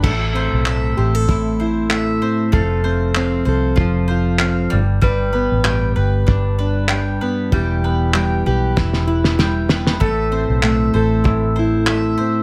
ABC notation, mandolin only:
X:1
M:4/4
L:1/8
Q:"Swing 16ths" 1/4=96
K:Am
V:1 name="Mandolin"
[A,e] c e c E c e c | [A,f] c f c F c f G, | [G,g] B g B D B g B | [G,g] B g B E B g B |
[A,e] c e c E c e c |]